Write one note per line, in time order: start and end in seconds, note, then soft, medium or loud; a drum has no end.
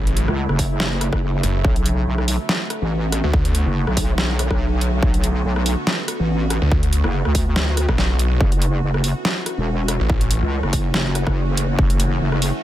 0.00 0.26 A1 loud
0.00 1.61 C#3 medium
0.00 1.61 F#3 medium
0.00 8.37 A3 medium
0.00 1.61 E4 medium
0.07 closed hi-hat soft
0.17 closed hi-hat medium
0.28 0.47 C#2 loud
0.28 cross-stick medium
0.49 1.11 F#1 medium
0.49 cross-stick soft
0.59 kick medium
0.59 open hi-hat medium
0.80 snare loud
1.01 cross-stick medium
1.01 closed hi-hat medium
1.13 1.42 F#1 loud
1.13 kick medium
1.13 cross-stick medium
1.43 1.63 F#1 medium
1.43 closed hi-hat medium
1.64 2.05 B1 loud
1.64 8.37 D3 medium
1.64 8.37 B3 medium
1.64 12.63 F#4 medium
1.64 kick loud
1.76 closed hi-hat soft
1.86 closed hi-hat medium
2.07 2.38 B1 loud
2.18 cross-stick medium
2.28 open hi-hat medium
2.49 snare loud
2.70 cross-stick medium
2.70 closed hi-hat medium
2.82 3.22 A1 loud
3.12 cross-stick medium
3.12 closed hi-hat medium
3.24 3.64 D2 loud
3.34 kick loud
3.45 closed hi-hat soft
3.55 closed hi-hat medium
3.66 3.85 F#1 loud
3.87 4.49 B1 loud
3.87 cross-stick medium
3.97 kick medium
3.97 open hi-hat medium
4.18 snare loud
4.39 cross-stick medium
4.39 closed hi-hat medium
4.51 5.01 B1 loud
4.51 kick medium
4.51 cross-stick medium
4.81 closed hi-hat medium
5.03 5.43 B1 loud
5.03 kick loud
5.14 closed hi-hat soft
5.24 closed hi-hat medium
5.45 5.76 B1 loud
5.56 cross-stick medium
5.66 open hi-hat loud
5.87 snare loud
6.08 cross-stick medium
6.08 closed hi-hat medium
6.20 6.60 A1 loud
6.50 cross-stick medium
6.50 closed hi-hat medium
6.62 7.02 D2 loud
6.72 kick loud
6.83 closed hi-hat soft
6.93 closed hi-hat medium
7.04 7.23 F#1 loud
7.04 cross-stick medium
7.25 7.87 D2 loud
7.25 cross-stick medium
7.35 kick medium
7.35 open hi-hat loud
7.56 snare loud
7.77 cross-stick medium
7.77 closed hi-hat medium
7.89 8.39 B1 loud
7.89 kick medium
7.89 cross-stick medium
7.98 snare medium
8.19 closed hi-hat medium
8.41 8.81 F#1 loud
8.41 12.63 E3 medium
8.41 12.63 A3 medium
8.41 12.63 C#4 medium
8.41 kick loud
8.52 closed hi-hat soft
8.62 closed hi-hat medium
8.83 9.14 F#1 loud
8.94 cross-stick medium
9.04 open hi-hat loud
9.25 snare loud
9.46 cross-stick medium
9.46 closed hi-hat medium
9.58 9.98 E1 loud
9.88 cross-stick medium
9.88 closed hi-hat medium
10.00 10.40 A1 loud
10.10 kick loud
10.21 closed hi-hat soft
10.31 closed hi-hat medium
10.42 10.61 C#2 loud
10.63 11.25 F#1 medium
10.63 cross-stick medium
10.73 kick medium
10.73 open hi-hat loud
10.94 snare loud
11.15 cross-stick medium
11.15 closed hi-hat medium
11.27 11.77 F#1 loud
11.27 kick medium
11.27 cross-stick medium
11.57 closed hi-hat medium
11.79 12.19 F#1 loud
11.79 kick loud
11.90 closed hi-hat soft
12.00 closed hi-hat medium
12.21 12.52 F#1 loud
12.32 cross-stick medium
12.42 open hi-hat medium